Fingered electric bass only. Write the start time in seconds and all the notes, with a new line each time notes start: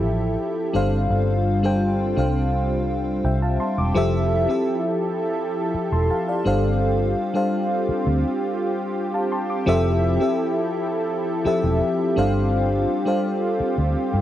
0.03 A1
0.75 G1
1.10 G1
2.17 C2
3.24 C2
3.78 E1
3.96 F1
5.74 muted fingered electric bass stroke
5.92 E1
6.46 G1
7.89 muted fingered electric bass stroke
8.07 D2
9.67 F1
11.46 muted fingered electric bass stroke
11.63 E1
12.17 G1
13.60 muted fingered electric bass stroke
13.78 D2
14.14 G2